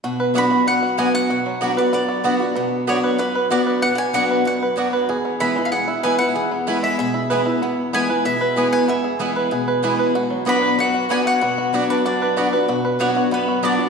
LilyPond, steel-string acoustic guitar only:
\new Staff \with { instrumentName = "Steel-string acoustic guitar" } { \time 4/4 \key b \dorian \tempo 4 = 190 << { r4 <fis b d' fis'>8 <d' fis'>8 r4 <fis b d' fis'>4 | r4 <fis b d' fis'>8 <d' fis'>8 r4 <fis b d' fis'>8 <d' fis'>8 | r4 <fis b d' fis'>4 r4 <fis b d' fis'>4 | r4 <fis b d' fis'>4 r4 <fis b d' fis'>4 |
r4 <e gis b e'>8 <b e'>8 r4 <e gis b e'>8 <b e'>8 | r4 <e gis b e'>4 r4 <e gis b e'>8 <b e'>8 | r4 <e gis b e'>8 <b e'>8 r4 <e gis b e'>4 | r4 <e gis b e'>4 r4 <e gis b e'>4 |
r4 <fis b d' fis'>4 r4 <fis b d' fis'>4 | r4 <fis b d' fis'>4 r4 <fis b d' fis'>8 <d' fis'>8 | r4 <fis b d' fis'>8 <d' fis'>8 r4 <fis b d' fis'>8 <d' fis'>8 | } \\ { b,2 fis,2 | b,2 fis,2 | b,2 fis,2 | b,2 fis,2 |
e,2 b,2 | e,2 b,2 | e,2 b,2 | e,2 b,2 |
b,2 fis,2 | b,2 fis,2 | b,2 fis,2 | } >> }